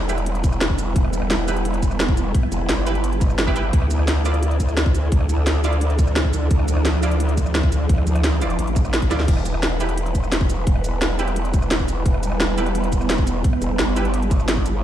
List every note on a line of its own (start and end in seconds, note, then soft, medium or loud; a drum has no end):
0.00 0.94 E1 medium
0.00 3.69 G3 medium
0.00 3.69 B3 medium
0.00 9.24 E4 medium
0.00 3.69 B4 medium
0.09 0.19 E4 medium
0.09 0.19 G4 medium
0.09 0.19 B4 medium
0.09 closed hi-hat medium
0.09 shaker medium
0.18 closed hi-hat soft
0.26 closed hi-hat medium
0.35 closed hi-hat soft
0.44 kick loud
0.44 closed hi-hat medium
0.44 shaker medium
0.52 cross-stick soft
0.52 shaker soft
0.61 snare loud
0.61 closed hi-hat loud
0.70 kick medium
0.78 closed hi-hat medium
0.78 shaker medium
0.96 2.33 E1 medium
0.96 kick loud
0.96 closed hi-hat medium
1.04 cross-stick medium
1.13 closed hi-hat medium
1.13 shaker medium
1.22 cross-stick medium
1.30 snare loud
1.30 closed hi-hat loud
1.48 1.58 E4 medium
1.48 1.58 G4 medium
1.48 1.58 B4 medium
1.48 closed hi-hat medium
1.48 shaker medium
1.57 closed hi-hat soft
1.65 closed hi-hat medium
1.74 closed hi-hat soft
1.82 kick medium
1.82 closed hi-hat medium
1.82 shaker medium
1.91 cross-stick soft
1.91 shaker soft
2.00 snare loud
2.00 closed hi-hat medium
2.08 kick loud
2.17 closed hi-hat medium
2.17 shaker medium
2.34 kick loud
2.34 closed hi-hat medium
2.43 cross-stick soft
2.52 2.68 E1 medium
2.52 closed hi-hat medium
2.52 shaker medium
2.69 3.72 G1 loud
2.69 snare loud
2.69 closed hi-hat medium
2.87 2.97 E4 medium
2.87 2.97 G4 medium
2.87 2.97 B4 medium
2.87 closed hi-hat medium
2.87 shaker medium
2.95 closed hi-hat soft
3.04 closed hi-hat medium
3.13 closed hi-hat soft
3.21 kick loud
3.21 closed hi-hat medium
3.21 shaker medium
3.30 cross-stick soft
3.30 shaker soft
3.38 snare loud
3.38 closed hi-hat loud
3.47 3.55 E4 medium
3.47 3.55 G4 medium
3.47 3.55 B4 loud
3.47 kick medium
3.56 3.66 E4 medium
3.56 3.66 G4 medium
3.56 3.66 B4 medium
3.56 closed hi-hat medium
3.56 shaker medium
3.73 5.11 D2 medium
3.73 9.24 F3 medium
3.73 9.24 D4 medium
3.73 6.48 A4 medium
3.73 kick loud
3.73 closed hi-hat medium
3.82 cross-stick soft
3.91 closed hi-hat medium
3.91 shaker medium
3.99 cross-stick medium
4.08 snare loud
4.08 closed hi-hat medium
4.25 4.35 E4 medium
4.25 4.35 F4 medium
4.25 4.35 D5 medium
4.25 closed hi-hat medium
4.25 shaker medium
4.34 closed hi-hat soft
4.43 closed hi-hat medium
4.51 closed hi-hat soft
4.60 kick medium
4.60 closed hi-hat medium
4.60 shaker medium
4.69 cross-stick soft
4.69 shaker soft
4.77 snare loud
4.77 closed hi-hat medium
4.86 kick loud
4.95 closed hi-hat medium
4.95 shaker medium
5.12 6.49 D2 medium
5.12 kick loud
5.12 closed hi-hat medium
5.21 cross-stick soft
5.29 closed hi-hat medium
5.29 shaker medium
5.47 snare loud
5.47 closed hi-hat medium
5.64 5.74 E4 medium
5.64 5.74 F4 medium
5.64 5.74 D5 medium
5.64 closed hi-hat medium
5.64 shaker medium
5.73 closed hi-hat soft
5.81 closed hi-hat medium
5.90 closed hi-hat soft
5.99 kick medium
5.99 closed hi-hat medium
5.99 shaker medium
6.07 cross-stick soft
6.07 shaker soft
6.16 snare loud
6.16 closed hi-hat medium
6.25 kick medium
6.33 closed hi-hat medium
6.33 shaker medium
6.51 7.88 D2 medium
6.51 14.79 B4 loud
6.51 kick loud
6.51 closed hi-hat loud
6.59 cross-stick soft
6.68 closed hi-hat medium
6.68 shaker medium
6.77 cross-stick medium
6.85 snare loud
6.85 closed hi-hat loud
7.03 7.13 E4 medium
7.03 7.13 F4 medium
7.03 7.13 D5 medium
7.03 closed hi-hat medium
7.03 shaker medium
7.11 closed hi-hat soft
7.20 closed hi-hat loud
7.29 closed hi-hat soft
7.37 kick medium
7.37 closed hi-hat medium
7.37 shaker medium
7.46 cross-stick soft
7.46 shaker soft
7.55 snare loud
7.55 closed hi-hat loud
7.63 kick loud
7.72 closed hi-hat medium
7.72 shaker medium
7.89 8.05 D2 medium
7.89 kick loud
7.89 closed hi-hat medium
7.98 cross-stick soft
8.07 8.57 D2 medium
8.07 closed hi-hat medium
8.07 shaker medium
8.15 cross-stick medium
8.15 closed hi-hat soft
8.24 snare loud
8.24 closed hi-hat medium
8.41 8.52 E4 medium
8.41 8.52 F4 medium
8.41 8.52 D5 medium
8.41 closed hi-hat medium
8.41 shaker medium
8.50 closed hi-hat soft
8.59 9.09 A1 loud
8.59 closed hi-hat medium
8.67 closed hi-hat soft
8.76 kick loud
8.76 closed hi-hat medium
8.76 shaker medium
8.85 cross-stick soft
8.85 shaker soft
8.94 snare loud
8.94 closed hi-hat loud
9.02 kick medium
9.02 closed hi-hat soft
9.11 9.27 D2 loud
9.11 9.21 E4 medium
9.11 9.21 F4 medium
9.11 9.21 D5 medium
9.11 snare medium
9.11 closed hi-hat medium
9.11 shaker medium
9.20 snare medium
9.28 10.65 E1 medium
9.28 14.79 G3 medium
9.28 14.79 B3 medium
9.28 14.84 E4 medium
9.28 kick loud
9.28 closed hi-hat medium
9.28 crash medium
9.37 cross-stick soft
9.46 closed hi-hat medium
9.46 shaker medium
9.54 cross-stick medium
9.63 snare loud
9.63 closed hi-hat loud
9.80 9.90 E4 medium
9.80 9.90 G4 medium
9.80 9.90 B4 medium
9.80 closed hi-hat medium
9.80 shaker medium
9.89 closed hi-hat soft
9.98 closed hi-hat loud
10.06 closed hi-hat soft
10.15 kick medium
10.15 closed hi-hat medium
10.15 shaker medium
10.24 cross-stick soft
10.24 shaker soft
10.32 snare loud
10.32 closed hi-hat loud
10.41 kick loud
10.50 closed hi-hat medium
10.50 shaker medium
10.67 12.04 E1 medium
10.67 kick loud
10.67 closed hi-hat medium
10.76 cross-stick soft
10.84 closed hi-hat medium
10.84 shaker medium
11.02 snare loud
11.02 closed hi-hat loud
11.19 11.29 E4 medium
11.19 11.29 G4 medium
11.19 11.29 B4 medium
11.19 closed hi-hat medium
11.19 shaker medium
11.28 closed hi-hat soft
11.36 closed hi-hat medium
11.45 closed hi-hat soft
11.54 kick loud
11.54 closed hi-hat medium
11.54 shaker medium
11.62 cross-stick soft
11.62 shaker soft
11.71 snare loud
11.71 closed hi-hat loud
11.80 kick medium
11.88 closed hi-hat medium
11.88 shaker medium
12.06 13.43 E1 loud
12.06 kick loud
12.06 closed hi-hat medium
12.14 cross-stick medium
12.23 closed hi-hat medium
12.23 shaker medium
12.32 cross-stick medium
12.40 snare loud
12.40 closed hi-hat medium
12.58 12.68 E4 medium
12.58 12.68 G4 medium
12.58 12.68 B4 medium
12.58 closed hi-hat medium
12.58 shaker medium
12.66 closed hi-hat soft
12.75 closed hi-hat medium
12.84 closed hi-hat soft
12.92 kick medium
12.92 closed hi-hat medium
12.92 shaker medium
13.01 cross-stick soft
13.01 shaker soft
13.10 snare loud
13.10 closed hi-hat medium
13.18 kick loud
13.27 closed hi-hat medium
13.27 shaker medium
13.44 kick loud
13.44 closed hi-hat medium
13.53 cross-stick soft
13.62 13.78 E1 medium
13.62 closed hi-hat medium
13.62 shaker medium
13.79 14.82 G1 loud
13.79 snare loud
13.79 closed hi-hat medium
13.96 14.06 E4 medium
13.96 14.06 G4 medium
13.96 14.06 B4 medium
13.96 closed hi-hat medium
13.96 shaker medium
14.05 closed hi-hat soft
14.14 closed hi-hat medium
14.22 closed hi-hat soft
14.31 kick loud
14.31 closed hi-hat medium
14.31 shaker medium
14.40 cross-stick soft
14.40 shaker soft
14.48 snare loud
14.48 closed hi-hat medium
14.57 kick medium
14.66 closed hi-hat medium
14.66 shaker medium